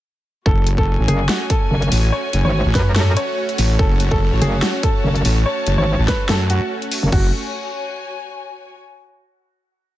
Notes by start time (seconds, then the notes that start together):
0.46 F#1 A3 C#4 F#4 A4, kick
0.54 C#5
0.67 closed hi-hat
0.78 F#1 A4 G#5, kick
0.99 A1
1.08 F#1 G#4, closed hi-hat
1.29 F#4, snare
1.50 A4, kick, closed hi-hat
1.71 F#1
1.82 closed hi-hat
1.92 A1, open hi-hat
2.12 C#5
2.33 F#1, closed hi-hat
2.45 G#1 C#5
2.66 A1
2.75 F#2 B4, kick, snare, closed hi-hat
2.96 A4, snare
3.17 C#5, closed hi-hat
3.49 closed hi-hat
3.58 A1, open hi-hat
3.79 F#1 A4 A5, kick
4.00 closed hi-hat
4.11 F#1 A4, kick
4.32 A1
4.42 F#1 G#4, closed hi-hat
4.62 F#4, snare
4.83 A4, kick, closed hi-hat
5.04 F#1
5.16 closed hi-hat
5.25 A1, open hi-hat
5.46 C#5
5.67 F#1, closed hi-hat
5.78 G#1 C#5
5.99 A1
6.08 B4, kick, snare, closed hi-hat
6.29 F#2 A4, snare
6.50 F#4, closed hi-hat
6.82 closed hi-hat
6.92 open hi-hat
7.03 F#1
7.12 F#1 F#4, kick, crash
7.19 C#5
7.26 G#5